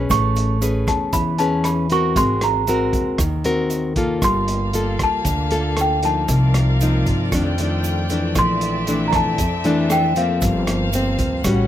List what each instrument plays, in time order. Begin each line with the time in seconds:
Already playing: nylon-string guitar C#4 G#4 B4
0.10 upright bass A1, nylon-string guitar A3, celesta C#6, kick, cross-stick, closed hi-hat, shaker
0.36 closed hi-hat, shaker
0.61 nylon-string guitar C#4 G#4 B4, closed hi-hat, shaker
0.87 upright bass E2, celesta A5, kick, cross-stick, closed hi-hat, shaker
1.13 upright bass E2, nylon-string guitar E3, celesta B5, kick, closed hi-hat, shaker
1.38 nylon-string guitar C#4 G#4 B4, celesta A5, closed hi-hat, shaker
1.64 celesta B5, cross-stick, closed hi-hat, shaker
1.90 nylon-string guitar C4 F#4 A#4, celesta C#6, closed hi-hat, shaker
2.16 upright bass G#1, nylon-string guitar G#3, celesta C6, kick, closed hi-hat, shaker
2.41 celesta A#5, cross-stick, closed hi-hat, shaker
2.67 nylon-string guitar C4 F#4 A#4, closed hi-hat, shaker
2.93 upright bass D#2, kick, closed hi-hat, shaker
3.18 upright bass D#2, nylon-string guitar D#3, kick, cross-stick, closed hi-hat, shaker
3.44 nylon-string guitar C4 F#4 A#4, closed hi-hat, shaker
3.70 closed hi-hat, shaker
3.96 nylon-string guitar A#3 F4 A4, kick, closed hi-hat, shaker
4.21 upright bass G1, nylon-string guitar G3, string section A#3 A4 F5, celesta C6, kick, cross-stick, closed hi-hat, shaker
4.48 closed hi-hat, shaker
4.73 nylon-string guitar A#3 F4 A4, closed hi-hat, shaker
4.99 upright bass D2, kick, cross-stick, closed hi-hat, shaker
5.03 celesta A5
5.25 upright bass D2, nylon-string guitar D3, kick, closed hi-hat, shaker
5.51 nylon-string guitar A#3 F4 A4, closed hi-hat, shaker
5.77 cross-stick, closed hi-hat, shaker
5.81 celesta G5
6.03 nylon-string guitar F3 A#3 D#4, celesta A5, closed hi-hat, shaker
6.28 upright bass C2, nylon-string guitar C3, string section F4 A#4 D5 F5, kick, closed hi-hat, shaker
6.54 cross-stick, closed hi-hat, shaker
6.81 nylon-string guitar F3 A#3 D#4, closed hi-hat, shaker
7.06 upright bass G2, kick, closed hi-hat, shaker
7.32 upright bass F2, nylon-string guitar F2 D#3 A3 D4, string section A4 G5, kick, cross-stick, closed hi-hat, shaker
7.58 nylon-string guitar D#3 A3 D4, closed hi-hat, shaker
7.84 closed hi-hat, shaker
8.09 nylon-string guitar E3 A3 D4, closed hi-hat, shaker
8.35 upright bass A#1, nylon-string guitar A#2, string section C4 E5, celesta C6, kick, cross-stick, closed hi-hat, shaker
8.61 closed hi-hat, shaker
8.87 nylon-string guitar E3 A3 D4, closed hi-hat, shaker
9.08 celesta A#5
9.13 upright bass F2, celesta A5, kick, cross-stick, closed hi-hat, shaker
9.38 nylon-string guitar F2, upright bass F2, kick, closed hi-hat, shaker
9.64 nylon-string guitar E3 A3 D4, closed hi-hat, shaker
9.90 celesta G5, cross-stick, closed hi-hat, shaker
10.16 nylon-string guitar F3 A#3 C4, celesta F5, closed hi-hat, shaker
10.41 upright bass G1, nylon-string guitar G2, string section A#3 C5 F5, kick, closed hi-hat, shaker
10.67 cross-stick, closed hi-hat, shaker
10.93 nylon-string guitar F3 A#3 C4, closed hi-hat, shaker
11.19 upright bass D2, kick, closed hi-hat, shaker
11.44 upright bass A1, nylon-string guitar A2 G3 C#4 F#4, string section B3 C#5 F#5, kick, cross-stick, closed hi-hat, shaker